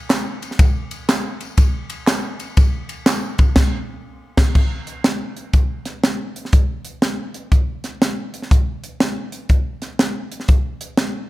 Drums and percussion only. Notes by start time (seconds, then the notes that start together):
0.10 snare, clap, ride bell, tambourine
0.42 ride bell, tambourine
0.51 snare
0.59 kick, ride bell, tambourine
0.91 ride bell, tambourine
1.09 snare, clap, ride bell, tambourine
1.41 ride bell, tambourine
1.57 kick, ride bell, tambourine
1.90 ride bell, tambourine
2.07 snare, clap, ride bell, tambourine
2.40 ride bell, tambourine
2.57 kick, ride bell, tambourine
2.89 ride bell, tambourine
3.06 snare, clap, ride bell, tambourine
3.38 kick, ride bell, tambourine
3.56 kick, snare, crash
4.37 kick, snare, crash
4.55 kick, crash
4.87 closed hi-hat
5.04 snare, closed hi-hat
5.37 closed hi-hat
5.53 kick, closed hi-hat
5.85 snare, closed hi-hat
6.04 snare, closed hi-hat
6.36 closed hi-hat
6.45 snare
6.53 kick, closed hi-hat
6.85 closed hi-hat
7.02 snare, closed hi-hat
7.34 closed hi-hat
7.52 kick, closed hi-hat
7.84 snare, closed hi-hat
8.02 snare, closed hi-hat
8.34 closed hi-hat
8.42 snare
8.51 kick, closed hi-hat
8.84 closed hi-hat
9.00 snare, closed hi-hat
9.32 closed hi-hat
9.49 kick, closed hi-hat
9.82 snare, closed hi-hat
9.99 snare, closed hi-hat
10.32 closed hi-hat
10.40 snare
10.48 kick, closed hi-hat
10.81 closed hi-hat
10.97 snare, closed hi-hat